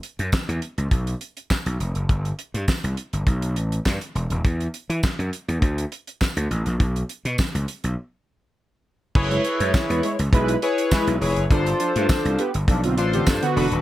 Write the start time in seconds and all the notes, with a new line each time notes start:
0.03 closed hi-hat
0.19 F#2, closed hi-hat
0.32 kick, snare, clap, tambourine
0.49 E2, closed hi-hat
0.62 closed hi-hat
0.78 C#2, closed hi-hat
0.91 B1, kick, closed hi-hat
1.07 closed hi-hat
1.21 closed hi-hat
1.37 closed hi-hat
1.50 kick, snare, clap, tambourine
1.66 B1, closed hi-hat
1.80 F1, closed hi-hat
1.95 F#1, closed hi-hat
2.09 G1, kick, closed hi-hat
2.25 closed hi-hat
2.39 closed hi-hat
2.54 G2, closed hi-hat
2.68 kick, snare, clap, tambourine
2.84 C2, closed hi-hat
2.97 closed hi-hat
3.13 G1, closed hi-hat
3.27 B1, kick, closed hi-hat
3.42 closed hi-hat
3.56 A1, closed hi-hat
3.72 closed hi-hat
3.85 G2, kick, snare, clap, tambourine
4.01 closed hi-hat
4.15 E1, closed hi-hat
4.30 D#1, closed hi-hat
4.45 E2, kick, closed hi-hat
4.60 closed hi-hat
4.74 closed hi-hat
4.90 E3, closed hi-hat
5.03 kick, snare, clap, tambourine
5.19 F#2, closed hi-hat
5.33 closed hi-hat
5.48 E2, closed hi-hat
5.62 D2, kick, closed hi-hat
5.78 closed hi-hat
5.92 closed hi-hat
6.07 closed hi-hat
6.21 kick, snare, clap, tambourine
6.37 D2, closed hi-hat
6.51 A1, closed hi-hat
6.66 A#1, closed hi-hat
6.80 B1, kick, closed hi-hat
6.96 closed hi-hat
7.09 closed hi-hat
7.25 B2, closed hi-hat
7.38 kick, snare, clap, tambourine
7.55 C#2, closed hi-hat
7.68 closed hi-hat
7.84 B1, closed hi-hat
9.15 F#1 E4 G#4 B4 C#5, kick, crash
9.31 G#3 E4 C#5, closed hi-hat
9.44 closed hi-hat
9.60 F#2 G#3 E4 B4, closed hi-hat
9.74 kick, snare, clap, tambourine
9.90 E2 G#3 E4 B4, closed hi-hat
10.03 G#3 E4 C#5, closed hi-hat
10.19 C#2, closed hi-hat
10.33 B1 G#3 E4 B4, kick, closed hi-hat
10.48 closed hi-hat
10.62 E4 G#4 B4 C#5, closed hi-hat
10.78 closed hi-hat
10.91 G#3 E4 B4, kick, snare, clap, tambourine
11.07 B1, closed hi-hat
11.21 F1 E4 G#4 B4 C#5, open hi-hat
11.36 F#1, closed hi-hat
11.50 G1 D4 F4 A4 C5, kick, closed hi-hat
11.66 closed hi-hat
11.80 F3 D4 A4, closed hi-hat
11.96 G2 A3 F4 C5, closed hi-hat
12.09 kick, snare, clap, tambourine
12.25 C2, closed hi-hat
12.39 B3 G4 B4, closed hi-hat
12.54 G1, closed hi-hat
12.68 B1 F3 D4 A4, kick, closed hi-hat
12.84 D3 C4 F4, closed hi-hat
12.98 A1 D4 F4 A4 C5, closed hi-hat
13.13 D3 C4 G4, closed hi-hat
13.27 G2, kick, snare, clap, tambourine
13.42 D3 B3 F#4, closed hi-hat
13.56 E1 D4 F#4 A4 B4, open hi-hat
13.72 D#1, closed hi-hat